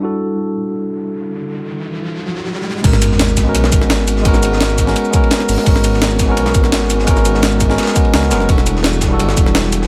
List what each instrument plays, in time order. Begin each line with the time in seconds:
0.00 tine electric piano G3 D4 E4 F#4, riser
0.05 tine electric piano A4
2.81 detuned saw bass G#1, tine electric piano G#3 B3 C#4, kick, closed hi-hat, ride, crash, sub drop
2.85 tine electric piano F#4 A#4
2.93 snare
3.02 closed hi-hat, ride, shaker
3.12 snare
3.19 snare, closed hi-hat, ride
3.29 shaker
3.37 kick, snare, closed hi-hat, ride, shaker
3.43 tine electric piano G#3 B3 C#4
3.48 tine electric piano F#4 A#4
3.55 detuned saw bass B1, closed hi-hat, ride
3.64 snare
3.72 detuned saw bass G#1, kick, closed hi-hat, ride, shaker
3.81 snare
3.90 snare, closed hi-hat, ride
3.99 snare
4.08 closed hi-hat, ride, shaker
4.16 snare
4.22 detuned saw bass G#1, tine electric piano G#3 B3 C#4, kick, closed hi-hat, ride
4.27 tine electric piano F#4 A#4
4.34 snare, shaker
4.43 closed hi-hat, ride, shaker
4.52 snare
4.61 snare, closed hi-hat, ride
4.70 shaker
4.78 kick, closed hi-hat, ride, shaker
4.86 tine electric piano G#3 B3 C#4 F#4 A#4, snare
4.96 closed hi-hat, ride
5.05 shaker
5.11 tine electric piano G#3 B3 C#4, kick, closed hi-hat, ride, shaker
5.15 tine electric piano F#4 A#4
5.24 ride
5.31 snare, closed hi-hat, ride
5.40 snare, ride
5.49 detuned saw bass G#1, closed hi-hat, open hi-hat, shaker
5.58 snare
5.64 detuned saw bass G#1, tine electric piano G#3 B3 C#4, kick, closed hi-hat, ride
5.68 tine electric piano F#4 A#4
5.76 snare
5.84 closed hi-hat, ride, shaker
5.94 snare
6.02 snare, closed hi-hat, ride
6.11 shaker
6.19 kick, snare, closed hi-hat, ride, shaker
6.25 tine electric piano G#3 B3 C#4
6.30 tine electric piano F#4 A#4
6.37 detuned saw bass B1, closed hi-hat, ride
6.46 snare
6.54 detuned saw bass G#1, kick, closed hi-hat, ride, shaker
6.64 snare
6.72 snare, closed hi-hat, ride
6.82 snare
6.90 closed hi-hat, ride, shaker
6.99 snare
7.05 detuned saw bass G#1, tine electric piano G#3 B3 C#4, kick, closed hi-hat, ride
7.09 tine electric piano F#4 A#4
7.17 snare, shaker
7.25 closed hi-hat, ride, shaker
7.34 snare
7.42 snare, closed hi-hat, ride
7.52 shaker
7.60 kick, closed hi-hat, ride, shaker
7.68 tine electric piano G#3 B3 C#4 F#4 A#4, snare
7.78 snare, closed hi-hat, ride
7.83 snare, ride
7.87 snare, ride, shaker
7.94 tine electric piano G#3 B3 C#4 F#4 G#4, kick, closed hi-hat, ride, shaker
8.05 ride
8.12 detuned saw bass C#2, tine electric piano G#3 B3 C#4 F#4 A#4, snare, closed hi-hat, ride
8.23 snare
8.30 detuned saw bass F#1, tine electric piano G#3 B3 C#4 F#4 A#4, snare, closed hi-hat, ride, shaker
8.40 snare
8.46 detuned saw bass E1, tine electric piano G3 D4 E4, kick, closed hi-hat, ride
8.50 tine electric piano F#4 A4
8.58 snare
8.67 closed hi-hat, ride, shaker
8.76 snare
8.83 snare, closed hi-hat, ride
8.93 shaker
9.01 kick, snare, closed hi-hat, ride, shaker
9.08 tine electric piano G3 D4 E4
9.12 tine electric piano F#4 A4
9.19 detuned saw bass G1, closed hi-hat, ride
9.28 snare
9.37 detuned saw bass E1, kick, closed hi-hat, ride, shaker
9.46 snare
9.55 snare, closed hi-hat, ride
9.64 snare
9.72 closed hi-hat, ride, shaker
9.82 snare